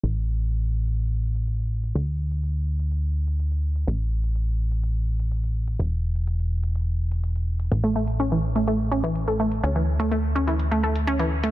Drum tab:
HH |x--xx--xx--xxx-x|x--xx--xx--xxx-x|x--xx--xx--xxx-x|x--xxx-xx--xxx-x|

HH |x--xx--xx--xxx-x|x--xx--xx--xxx-x|